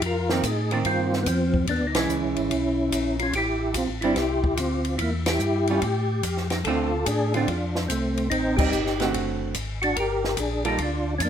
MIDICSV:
0, 0, Header, 1, 5, 480
1, 0, Start_track
1, 0, Tempo, 414365
1, 22, Time_signature, 4, 2, 24, 8
1, 13083, End_track
2, 0, Start_track
2, 0, Title_t, "Tonewheel organ"
2, 0, Program_c, 0, 16
2, 65, Note_on_c, 0, 70, 96
2, 74, Note_on_c, 0, 65, 76
2, 497, Note_off_c, 0, 65, 0
2, 532, Note_on_c, 0, 68, 88
2, 538, Note_off_c, 0, 70, 0
2, 546, Note_on_c, 0, 63, 76
2, 820, Note_off_c, 0, 63, 0
2, 842, Note_on_c, 0, 65, 80
2, 843, Note_off_c, 0, 68, 0
2, 853, Note_on_c, 0, 62, 66
2, 911, Note_off_c, 0, 65, 0
2, 919, Note_off_c, 0, 62, 0
2, 996, Note_on_c, 0, 65, 93
2, 1005, Note_on_c, 0, 60, 70
2, 1390, Note_off_c, 0, 60, 0
2, 1427, Note_off_c, 0, 65, 0
2, 1427, Note_on_c, 0, 59, 65
2, 1473, Note_off_c, 0, 59, 0
2, 1479, Note_on_c, 0, 60, 90
2, 1496, Note_on_c, 0, 53, 73
2, 1919, Note_off_c, 0, 60, 0
2, 1928, Note_off_c, 0, 53, 0
2, 1959, Note_on_c, 0, 62, 85
2, 1978, Note_on_c, 0, 59, 69
2, 2157, Note_off_c, 0, 59, 0
2, 2167, Note_on_c, 0, 63, 67
2, 2168, Note_off_c, 0, 62, 0
2, 2268, Note_off_c, 0, 63, 0
2, 2270, Note_on_c, 0, 64, 89
2, 2291, Note_on_c, 0, 61, 70
2, 3661, Note_off_c, 0, 64, 0
2, 3671, Note_off_c, 0, 61, 0
2, 3704, Note_on_c, 0, 65, 93
2, 3737, Note_on_c, 0, 61, 73
2, 3855, Note_off_c, 0, 65, 0
2, 3873, Note_off_c, 0, 61, 0
2, 3886, Note_on_c, 0, 67, 101
2, 3911, Note_on_c, 0, 64, 73
2, 4336, Note_on_c, 0, 65, 95
2, 4337, Note_off_c, 0, 64, 0
2, 4371, Note_off_c, 0, 67, 0
2, 4372, Note_on_c, 0, 60, 70
2, 4481, Note_off_c, 0, 65, 0
2, 4509, Note_off_c, 0, 60, 0
2, 4645, Note_on_c, 0, 64, 85
2, 4671, Note_on_c, 0, 62, 66
2, 4797, Note_on_c, 0, 67, 91
2, 4806, Note_off_c, 0, 64, 0
2, 4820, Note_off_c, 0, 62, 0
2, 4833, Note_on_c, 0, 64, 73
2, 5277, Note_off_c, 0, 64, 0
2, 5280, Note_on_c, 0, 65, 95
2, 5307, Note_off_c, 0, 67, 0
2, 5322, Note_on_c, 0, 60, 73
2, 5740, Note_off_c, 0, 65, 0
2, 5762, Note_off_c, 0, 60, 0
2, 5772, Note_on_c, 0, 64, 90
2, 5809, Note_on_c, 0, 58, 70
2, 5918, Note_off_c, 0, 64, 0
2, 5947, Note_off_c, 0, 58, 0
2, 6099, Note_on_c, 0, 67, 98
2, 6138, Note_on_c, 0, 64, 71
2, 6721, Note_off_c, 0, 64, 0
2, 7495, Note_off_c, 0, 67, 0
2, 7533, Note_on_c, 0, 67, 84
2, 7566, Note_on_c, 0, 63, 68
2, 7609, Note_off_c, 0, 67, 0
2, 7635, Note_off_c, 0, 63, 0
2, 7695, Note_on_c, 0, 69, 87
2, 7733, Note_on_c, 0, 65, 74
2, 8167, Note_off_c, 0, 65, 0
2, 8175, Note_on_c, 0, 68, 91
2, 8196, Note_off_c, 0, 69, 0
2, 8202, Note_on_c, 0, 62, 68
2, 8490, Note_off_c, 0, 62, 0
2, 8505, Note_on_c, 0, 65, 83
2, 8507, Note_off_c, 0, 68, 0
2, 8539, Note_on_c, 0, 62, 61
2, 8632, Note_off_c, 0, 65, 0
2, 8646, Note_on_c, 0, 65, 82
2, 8675, Note_off_c, 0, 62, 0
2, 8691, Note_on_c, 0, 62, 67
2, 9102, Note_off_c, 0, 65, 0
2, 9126, Note_off_c, 0, 62, 0
2, 9132, Note_on_c, 0, 60, 81
2, 9166, Note_on_c, 0, 57, 60
2, 9585, Note_off_c, 0, 60, 0
2, 9603, Note_off_c, 0, 57, 0
2, 9616, Note_on_c, 0, 63, 86
2, 9635, Note_on_c, 0, 60, 67
2, 9915, Note_off_c, 0, 63, 0
2, 9924, Note_on_c, 0, 67, 105
2, 9926, Note_off_c, 0, 60, 0
2, 9957, Note_on_c, 0, 63, 64
2, 10548, Note_off_c, 0, 63, 0
2, 10596, Note_off_c, 0, 67, 0
2, 11372, Note_on_c, 0, 66, 82
2, 11397, Note_on_c, 0, 62, 69
2, 11542, Note_off_c, 0, 62, 0
2, 11542, Note_on_c, 0, 70, 93
2, 11545, Note_off_c, 0, 66, 0
2, 11581, Note_on_c, 0, 67, 72
2, 12011, Note_off_c, 0, 67, 0
2, 12026, Note_on_c, 0, 68, 85
2, 12038, Note_off_c, 0, 70, 0
2, 12044, Note_on_c, 0, 62, 68
2, 12320, Note_off_c, 0, 68, 0
2, 12329, Note_off_c, 0, 62, 0
2, 12353, Note_on_c, 0, 67, 81
2, 12377, Note_on_c, 0, 63, 68
2, 12507, Note_on_c, 0, 65, 89
2, 12512, Note_off_c, 0, 63, 0
2, 12515, Note_off_c, 0, 67, 0
2, 12535, Note_on_c, 0, 62, 68
2, 12900, Note_off_c, 0, 65, 0
2, 12915, Note_off_c, 0, 62, 0
2, 12956, Note_on_c, 0, 61, 65
2, 12997, Note_off_c, 0, 61, 0
2, 13001, Note_on_c, 0, 62, 85
2, 13028, Note_on_c, 0, 58, 68
2, 13083, Note_off_c, 0, 58, 0
2, 13083, Note_off_c, 0, 62, 0
2, 13083, End_track
3, 0, Start_track
3, 0, Title_t, "Hollow-body jazz guitar"
3, 0, Program_c, 1, 26
3, 352, Note_on_c, 1, 51, 65
3, 356, Note_on_c, 1, 58, 66
3, 368, Note_on_c, 1, 60, 72
3, 493, Note_off_c, 1, 51, 0
3, 495, Note_off_c, 1, 58, 0
3, 501, Note_off_c, 1, 60, 0
3, 833, Note_on_c, 1, 51, 67
3, 833, Note_on_c, 1, 58, 61
3, 840, Note_on_c, 1, 60, 68
3, 1438, Note_off_c, 1, 51, 0
3, 1438, Note_off_c, 1, 58, 0
3, 1441, Note_off_c, 1, 60, 0
3, 2277, Note_on_c, 1, 52, 71
3, 2282, Note_on_c, 1, 56, 77
3, 2881, Note_off_c, 1, 52, 0
3, 2883, Note_off_c, 1, 56, 0
3, 4677, Note_on_c, 1, 55, 68
3, 4679, Note_on_c, 1, 64, 79
3, 4682, Note_on_c, 1, 60, 80
3, 4818, Note_off_c, 1, 55, 0
3, 4819, Note_off_c, 1, 64, 0
3, 4820, Note_off_c, 1, 60, 0
3, 6603, Note_on_c, 1, 55, 69
3, 6612, Note_on_c, 1, 61, 69
3, 6613, Note_on_c, 1, 65, 70
3, 6741, Note_off_c, 1, 55, 0
3, 6746, Note_off_c, 1, 61, 0
3, 6746, Note_off_c, 1, 65, 0
3, 7723, Note_on_c, 1, 50, 76
3, 7726, Note_on_c, 1, 57, 89
3, 7736, Note_on_c, 1, 65, 84
3, 7737, Note_on_c, 1, 60, 82
3, 8000, Note_off_c, 1, 50, 0
3, 8002, Note_off_c, 1, 57, 0
3, 8007, Note_off_c, 1, 60, 0
3, 8007, Note_off_c, 1, 65, 0
3, 8520, Note_on_c, 1, 50, 69
3, 8528, Note_on_c, 1, 57, 66
3, 8530, Note_on_c, 1, 60, 71
3, 8535, Note_on_c, 1, 65, 78
3, 8659, Note_off_c, 1, 50, 0
3, 8663, Note_off_c, 1, 57, 0
3, 8664, Note_off_c, 1, 60, 0
3, 8666, Note_off_c, 1, 65, 0
3, 9952, Note_on_c, 1, 55, 73
3, 9958, Note_on_c, 1, 60, 70
3, 9967, Note_on_c, 1, 63, 81
3, 10095, Note_off_c, 1, 55, 0
3, 10098, Note_off_c, 1, 60, 0
3, 10102, Note_off_c, 1, 63, 0
3, 10425, Note_on_c, 1, 50, 56
3, 10435, Note_on_c, 1, 57, 69
3, 10442, Note_on_c, 1, 60, 66
3, 10443, Note_on_c, 1, 66, 64
3, 11034, Note_off_c, 1, 50, 0
3, 11039, Note_off_c, 1, 57, 0
3, 11043, Note_off_c, 1, 60, 0
3, 11043, Note_off_c, 1, 66, 0
3, 12335, Note_on_c, 1, 58, 59
3, 12336, Note_on_c, 1, 55, 61
3, 12342, Note_on_c, 1, 65, 64
3, 12343, Note_on_c, 1, 69, 68
3, 12485, Note_off_c, 1, 55, 0
3, 12485, Note_off_c, 1, 58, 0
3, 12488, Note_off_c, 1, 65, 0
3, 12489, Note_off_c, 1, 69, 0
3, 13083, End_track
4, 0, Start_track
4, 0, Title_t, "Tonewheel organ"
4, 0, Program_c, 2, 16
4, 20, Note_on_c, 2, 41, 88
4, 487, Note_off_c, 2, 41, 0
4, 500, Note_on_c, 2, 45, 84
4, 967, Note_off_c, 2, 45, 0
4, 984, Note_on_c, 2, 43, 79
4, 1450, Note_off_c, 2, 43, 0
4, 1461, Note_on_c, 2, 41, 90
4, 1928, Note_off_c, 2, 41, 0
4, 1944, Note_on_c, 2, 40, 78
4, 2099, Note_off_c, 2, 40, 0
4, 2101, Note_on_c, 2, 38, 57
4, 2252, Note_on_c, 2, 35, 73
4, 2263, Note_off_c, 2, 38, 0
4, 2407, Note_off_c, 2, 35, 0
4, 2421, Note_on_c, 2, 37, 86
4, 2578, Note_off_c, 2, 37, 0
4, 2582, Note_on_c, 2, 35, 52
4, 2734, Note_on_c, 2, 32, 68
4, 2744, Note_off_c, 2, 35, 0
4, 2888, Note_off_c, 2, 32, 0
4, 2900, Note_on_c, 2, 35, 82
4, 3369, Note_off_c, 2, 35, 0
4, 3385, Note_on_c, 2, 34, 89
4, 3852, Note_off_c, 2, 34, 0
4, 3860, Note_on_c, 2, 33, 82
4, 4329, Note_off_c, 2, 33, 0
4, 4337, Note_on_c, 2, 34, 91
4, 4490, Note_on_c, 2, 33, 56
4, 4497, Note_off_c, 2, 34, 0
4, 4651, Note_on_c, 2, 31, 61
4, 4658, Note_off_c, 2, 33, 0
4, 4807, Note_off_c, 2, 31, 0
4, 4821, Note_on_c, 2, 36, 90
4, 5290, Note_off_c, 2, 36, 0
4, 5297, Note_on_c, 2, 38, 86
4, 5768, Note_off_c, 2, 38, 0
4, 5777, Note_on_c, 2, 40, 88
4, 6248, Note_off_c, 2, 40, 0
4, 6252, Note_on_c, 2, 43, 88
4, 6725, Note_off_c, 2, 43, 0
4, 6740, Note_on_c, 2, 45, 87
4, 7210, Note_off_c, 2, 45, 0
4, 7219, Note_on_c, 2, 41, 85
4, 7689, Note_off_c, 2, 41, 0
4, 7698, Note_on_c, 2, 38, 86
4, 8168, Note_off_c, 2, 38, 0
4, 8181, Note_on_c, 2, 45, 89
4, 8650, Note_off_c, 2, 45, 0
4, 8663, Note_on_c, 2, 41, 79
4, 9130, Note_off_c, 2, 41, 0
4, 9144, Note_on_c, 2, 36, 92
4, 9611, Note_off_c, 2, 36, 0
4, 9627, Note_on_c, 2, 33, 86
4, 10092, Note_off_c, 2, 33, 0
4, 10107, Note_on_c, 2, 31, 87
4, 10572, Note_off_c, 2, 31, 0
4, 10585, Note_on_c, 2, 30, 88
4, 11051, Note_off_c, 2, 30, 0
4, 11059, Note_on_c, 2, 32, 83
4, 11527, Note_off_c, 2, 32, 0
4, 11539, Note_on_c, 2, 31, 93
4, 12007, Note_off_c, 2, 31, 0
4, 12017, Note_on_c, 2, 34, 91
4, 12486, Note_off_c, 2, 34, 0
4, 12494, Note_on_c, 2, 38, 82
4, 12964, Note_off_c, 2, 38, 0
4, 12972, Note_on_c, 2, 41, 93
4, 13083, Note_off_c, 2, 41, 0
4, 13083, End_track
5, 0, Start_track
5, 0, Title_t, "Drums"
5, 21, Note_on_c, 9, 51, 68
5, 22, Note_on_c, 9, 36, 21
5, 136, Note_off_c, 9, 51, 0
5, 138, Note_off_c, 9, 36, 0
5, 341, Note_on_c, 9, 38, 60
5, 457, Note_off_c, 9, 38, 0
5, 503, Note_on_c, 9, 44, 69
5, 503, Note_on_c, 9, 51, 64
5, 505, Note_on_c, 9, 36, 29
5, 619, Note_off_c, 9, 44, 0
5, 619, Note_off_c, 9, 51, 0
5, 621, Note_off_c, 9, 36, 0
5, 822, Note_on_c, 9, 51, 45
5, 937, Note_off_c, 9, 51, 0
5, 981, Note_on_c, 9, 51, 64
5, 986, Note_on_c, 9, 36, 20
5, 1097, Note_off_c, 9, 51, 0
5, 1101, Note_off_c, 9, 36, 0
5, 1310, Note_on_c, 9, 38, 37
5, 1426, Note_off_c, 9, 38, 0
5, 1461, Note_on_c, 9, 44, 58
5, 1461, Note_on_c, 9, 51, 69
5, 1465, Note_on_c, 9, 36, 22
5, 1577, Note_off_c, 9, 44, 0
5, 1577, Note_off_c, 9, 51, 0
5, 1581, Note_off_c, 9, 36, 0
5, 1781, Note_on_c, 9, 36, 55
5, 1897, Note_off_c, 9, 36, 0
5, 1938, Note_on_c, 9, 51, 60
5, 1944, Note_on_c, 9, 36, 23
5, 2054, Note_off_c, 9, 51, 0
5, 2060, Note_off_c, 9, 36, 0
5, 2254, Note_on_c, 9, 51, 76
5, 2259, Note_on_c, 9, 38, 82
5, 2370, Note_off_c, 9, 51, 0
5, 2374, Note_off_c, 9, 38, 0
5, 2422, Note_on_c, 9, 44, 54
5, 2538, Note_off_c, 9, 44, 0
5, 2738, Note_on_c, 9, 51, 45
5, 2854, Note_off_c, 9, 51, 0
5, 2905, Note_on_c, 9, 36, 25
5, 2905, Note_on_c, 9, 51, 57
5, 3021, Note_off_c, 9, 36, 0
5, 3021, Note_off_c, 9, 51, 0
5, 3385, Note_on_c, 9, 44, 60
5, 3385, Note_on_c, 9, 51, 75
5, 3386, Note_on_c, 9, 36, 23
5, 3501, Note_off_c, 9, 44, 0
5, 3501, Note_off_c, 9, 51, 0
5, 3502, Note_off_c, 9, 36, 0
5, 3699, Note_on_c, 9, 51, 48
5, 3815, Note_off_c, 9, 51, 0
5, 3861, Note_on_c, 9, 51, 69
5, 3864, Note_on_c, 9, 36, 20
5, 3977, Note_off_c, 9, 51, 0
5, 3979, Note_off_c, 9, 36, 0
5, 4334, Note_on_c, 9, 44, 54
5, 4334, Note_on_c, 9, 51, 69
5, 4342, Note_on_c, 9, 36, 23
5, 4450, Note_off_c, 9, 44, 0
5, 4450, Note_off_c, 9, 51, 0
5, 4458, Note_off_c, 9, 36, 0
5, 4657, Note_on_c, 9, 51, 44
5, 4772, Note_off_c, 9, 51, 0
5, 4817, Note_on_c, 9, 51, 58
5, 4821, Note_on_c, 9, 38, 42
5, 4824, Note_on_c, 9, 36, 18
5, 4932, Note_off_c, 9, 51, 0
5, 4937, Note_off_c, 9, 38, 0
5, 4940, Note_off_c, 9, 36, 0
5, 5140, Note_on_c, 9, 36, 57
5, 5256, Note_off_c, 9, 36, 0
5, 5298, Note_on_c, 9, 44, 60
5, 5298, Note_on_c, 9, 51, 68
5, 5302, Note_on_c, 9, 36, 24
5, 5414, Note_off_c, 9, 44, 0
5, 5414, Note_off_c, 9, 51, 0
5, 5418, Note_off_c, 9, 36, 0
5, 5613, Note_on_c, 9, 51, 47
5, 5729, Note_off_c, 9, 51, 0
5, 5776, Note_on_c, 9, 51, 67
5, 5783, Note_on_c, 9, 36, 23
5, 5892, Note_off_c, 9, 51, 0
5, 5899, Note_off_c, 9, 36, 0
5, 6092, Note_on_c, 9, 51, 73
5, 6097, Note_on_c, 9, 38, 80
5, 6208, Note_off_c, 9, 51, 0
5, 6213, Note_off_c, 9, 38, 0
5, 6250, Note_on_c, 9, 44, 54
5, 6366, Note_off_c, 9, 44, 0
5, 6573, Note_on_c, 9, 51, 45
5, 6688, Note_off_c, 9, 51, 0
5, 6738, Note_on_c, 9, 51, 60
5, 6742, Note_on_c, 9, 36, 26
5, 6853, Note_off_c, 9, 51, 0
5, 6857, Note_off_c, 9, 36, 0
5, 7218, Note_on_c, 9, 44, 57
5, 7218, Note_on_c, 9, 51, 68
5, 7223, Note_on_c, 9, 36, 19
5, 7334, Note_off_c, 9, 44, 0
5, 7334, Note_off_c, 9, 51, 0
5, 7339, Note_off_c, 9, 36, 0
5, 7382, Note_on_c, 9, 38, 28
5, 7498, Note_off_c, 9, 38, 0
5, 7531, Note_on_c, 9, 51, 46
5, 7538, Note_on_c, 9, 38, 49
5, 7646, Note_off_c, 9, 51, 0
5, 7654, Note_off_c, 9, 38, 0
5, 7699, Note_on_c, 9, 51, 63
5, 7704, Note_on_c, 9, 36, 26
5, 7815, Note_off_c, 9, 51, 0
5, 7819, Note_off_c, 9, 36, 0
5, 8180, Note_on_c, 9, 44, 55
5, 8180, Note_on_c, 9, 51, 78
5, 8185, Note_on_c, 9, 36, 25
5, 8296, Note_off_c, 9, 44, 0
5, 8296, Note_off_c, 9, 51, 0
5, 8301, Note_off_c, 9, 36, 0
5, 8502, Note_on_c, 9, 51, 47
5, 8618, Note_off_c, 9, 51, 0
5, 8663, Note_on_c, 9, 51, 61
5, 8668, Note_on_c, 9, 36, 25
5, 8779, Note_off_c, 9, 51, 0
5, 8784, Note_off_c, 9, 36, 0
5, 8983, Note_on_c, 9, 38, 53
5, 9099, Note_off_c, 9, 38, 0
5, 9147, Note_on_c, 9, 44, 54
5, 9147, Note_on_c, 9, 51, 64
5, 9149, Note_on_c, 9, 36, 25
5, 9263, Note_off_c, 9, 44, 0
5, 9263, Note_off_c, 9, 51, 0
5, 9265, Note_off_c, 9, 36, 0
5, 9469, Note_on_c, 9, 51, 47
5, 9584, Note_off_c, 9, 51, 0
5, 9629, Note_on_c, 9, 36, 23
5, 9629, Note_on_c, 9, 51, 65
5, 9745, Note_off_c, 9, 36, 0
5, 9745, Note_off_c, 9, 51, 0
5, 9944, Note_on_c, 9, 49, 85
5, 9945, Note_on_c, 9, 36, 92
5, 10060, Note_off_c, 9, 49, 0
5, 10061, Note_off_c, 9, 36, 0
5, 10101, Note_on_c, 9, 44, 57
5, 10217, Note_off_c, 9, 44, 0
5, 10269, Note_on_c, 9, 38, 29
5, 10385, Note_off_c, 9, 38, 0
5, 10422, Note_on_c, 9, 51, 47
5, 10432, Note_on_c, 9, 38, 46
5, 10537, Note_off_c, 9, 51, 0
5, 10548, Note_off_c, 9, 38, 0
5, 10590, Note_on_c, 9, 36, 22
5, 10590, Note_on_c, 9, 51, 62
5, 10706, Note_off_c, 9, 36, 0
5, 10706, Note_off_c, 9, 51, 0
5, 11056, Note_on_c, 9, 44, 60
5, 11056, Note_on_c, 9, 51, 72
5, 11066, Note_on_c, 9, 36, 19
5, 11172, Note_off_c, 9, 44, 0
5, 11172, Note_off_c, 9, 51, 0
5, 11181, Note_off_c, 9, 36, 0
5, 11382, Note_on_c, 9, 51, 44
5, 11498, Note_off_c, 9, 51, 0
5, 11543, Note_on_c, 9, 51, 68
5, 11544, Note_on_c, 9, 36, 22
5, 11659, Note_off_c, 9, 51, 0
5, 11660, Note_off_c, 9, 36, 0
5, 11867, Note_on_c, 9, 38, 46
5, 11983, Note_off_c, 9, 38, 0
5, 12011, Note_on_c, 9, 44, 55
5, 12011, Note_on_c, 9, 51, 71
5, 12021, Note_on_c, 9, 36, 21
5, 12127, Note_off_c, 9, 44, 0
5, 12127, Note_off_c, 9, 51, 0
5, 12137, Note_off_c, 9, 36, 0
5, 12333, Note_on_c, 9, 51, 50
5, 12449, Note_off_c, 9, 51, 0
5, 12492, Note_on_c, 9, 51, 62
5, 12498, Note_on_c, 9, 36, 25
5, 12608, Note_off_c, 9, 51, 0
5, 12614, Note_off_c, 9, 36, 0
5, 12975, Note_on_c, 9, 44, 54
5, 12975, Note_on_c, 9, 51, 70
5, 12976, Note_on_c, 9, 36, 28
5, 13083, Note_off_c, 9, 36, 0
5, 13083, Note_off_c, 9, 44, 0
5, 13083, Note_off_c, 9, 51, 0
5, 13083, End_track
0, 0, End_of_file